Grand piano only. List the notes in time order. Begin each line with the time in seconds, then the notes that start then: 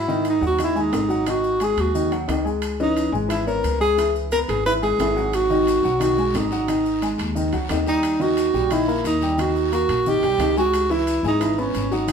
0.08 D#3 D#4 D#5
0.41 F#3 F#4 F#5
0.59 D#3 D#4 D#5
0.75 G#3 G#4 G#5
1.09 F#3 F#4 F#5
1.27 D#3 D#4 D#5
1.61 G#3 G#4 G#5
1.95 D#3 D#4 D#5
2.11 F#3 F#4 F#5
2.28 D#3 D#4 D#5
2.45 G#3 G#4 G#5
2.80 E3 C#4 D#5
3.12 G#3 G#4 G#5
3.28 E3 E4 E5
3.47 B3 C#5
3.80 G#3 G#4 G#5
3.98 E3 E4 E5
4.32 B3 B4 B5
4.66 E3 E4 E5
4.82 G#3 G#4 G#5
5.00 E3 E4 E5
5.16 F#3 F#4 F#5
5.50 D#3 D#4 D#5
5.84 F#3 F#4 F#5
6.00 D#3 D#4 D#5
6.18 G#3 G#4 G#5
6.52 F#3 F#4 F#5
6.68 D#3 D#4 D#5
7.02 G#3 G#4 G#5
7.35 D#3 D#4 D#5
7.53 F#3 F#4 F#5
7.70 D#3 D#4 D#5
7.86 G3 G4 G5
8.20 D#3 D#4 D#5
8.54 G3 G4 G5
8.71 D#3 D#4 D#5
8.88 A#3 A#4 A#5
9.22 G3 G4 G5
9.38 D#3 D#4 D#5
9.72 A#3 A#4 A#5
10.07 D#3 D#4 D#5
10.23 G3 G4 G5
10.40 D#3 D#4 D#5
10.57 G#3 G#4 G#5
10.90 E3 E4 E5
11.24 G#3 G#4 G#5
11.40 E3 E4 E5
11.58 B3 B4 B5
11.91 F#3 F#4 F#5
12.07 D#3 D#4 D#5